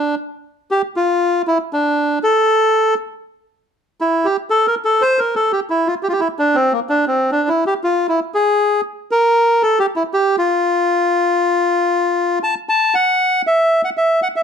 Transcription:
0.00 0.15 D4 medium
0.71 0.82 G4 medium
0.96 1.42 F4 medium
1.47 1.58 E4 medium
1.73 2.19 D4 medium
2.23 2.94 A4 loud
4.01 4.27 E4 medium
4.25 4.37 G4 medium
4.50 4.67 A4 medium
4.67 4.75 A#4 medium
4.85 5.03 A4 medium
5.02 5.20 C5 medium
5.19 5.35 A#4 medium
5.36 5.52 A4 medium
5.52 5.60 G4 medium
5.70 5.88 E4 medium
5.87 5.95 F4 medium
6.03 6.08 G4 medium
6.09 6.13 F4 medium
6.09 6.20 G4 medium
6.20 6.28 E4 medium
6.39 6.56 D4 medium
6.55 6.73 C4 medium
6.72 6.80 A#3 medium
6.89 7.05 D4 medium
7.07 7.31 C4 medium
7.32 7.49 D4 medium
7.48 7.64 E4 medium
7.67 7.74 G4 medium
7.84 8.07 F4 medium
8.09 8.20 E4 medium
8.34 8.81 G#4 medium
9.11 9.63 A#4 loud
9.63 9.79 A4 medium
9.79 9.86 G4 medium
9.96 10.03 E4 medium
10.13 10.36 G4 medium
10.38 12.39 F4 medium
12.43 12.55 A5 medium
12.69 12.95 A5 medium
12.95 13.42 F#5 medium
13.47 13.82 E5 medium
13.84 13.90 F#5 medium
13.97 14.20 E5 medium
14.22 14.28 F#5 medium
14.36 14.41 E5 medium

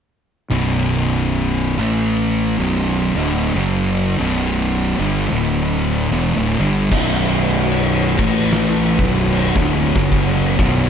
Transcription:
0.50 1.75 B0 medium
0.50 1.77 B1 medium
0.50 1.77 F#2 medium
0.50 1.77 B2 loud
1.78 2.55 A1 medium
1.78 2.57 A2 medium
1.78 2.57 E3 medium
1.78 2.57 A3 medium
2.58 3.12 B0 medium
2.58 3.14 B1 medium
2.58 3.14 F#2 medium
2.58 3.14 B2 loud
3.14 3.52 D1 medium
3.14 3.54 D2 medium
3.14 3.54 A2 medium
3.14 3.55 D3 medium
3.54 4.15 F#1 medium
3.54 4.17 F#2 medium
3.54 4.18 C#3 medium
3.54 4.18 F#3 medium
4.17 4.95 B0 medium
4.17 4.97 B1 medium
4.17 4.97 F#2 medium
4.17 4.98 B2 loud
4.98 5.30 G1 medium
4.98 5.30 G2 medium
4.98 5.30 D3 medium
4.98 5.31 G3 loud
5.30 6.08 D1 loud
5.30 6.10 D2 medium
5.30 6.11 A2 medium
5.30 6.11 D3 medium
6.11 6.34 E1 medium
6.11 6.34 E2 medium
6.11 6.35 B2 loud
6.36 6.58 D1 medium
6.36 6.58 D2 medium
6.36 6.58 A2 loud
6.59 6.90 G1 medium
6.59 6.91 G2 medium
6.59 6.91 D3 medium
6.59 6.92 G3 loud
6.91 8.15 B0 medium
6.91 8.18 B1 medium
6.91 8.18 F#2 loud
6.91 8.18 B2 loud
6.91 8.18 B3 medium
6.91 8.18 F#4 medium
6.91 8.18 C#5 medium
6.91 kick loud
6.91 crash loud
6.91 crash medium
7.72 crash medium
8.18 8.95 A1 medium
8.18 8.98 A2 medium
8.18 8.98 E3 loud
8.18 8.98 A3 medium
8.18 8.98 A3 loud
8.18 8.98 E4 medium
8.18 8.99 B4 medium
8.18 kick loud
8.18 crash loud
8.51 snare loud
8.51 crash medium
8.99 9.52 B0 medium
8.99 9.54 B1 medium
8.99 9.54 F#2 medium
8.99 9.55 B2 medium
8.99 10.90 B3 medium
8.99 10.90 F#4 medium
8.99 10.90 C#5 medium
8.99 kick loud
9.32 crash medium
9.54 9.93 D1 medium
9.54 9.94 D2 medium
9.54 9.94 A2 medium
9.54 9.95 D3 loud
9.54 kick loud
9.95 10.55 F#1 medium
9.95 10.57 F#2 loud
9.95 10.58 C#3 loud
9.95 10.58 F#3 medium
9.95 kick loud
10.12 kick loud
10.12 crash medium
10.58 10.90 B0 medium
10.58 10.90 B1 medium
10.58 10.90 F#2 medium
10.58 10.90 B2 loud
10.58 kick loud

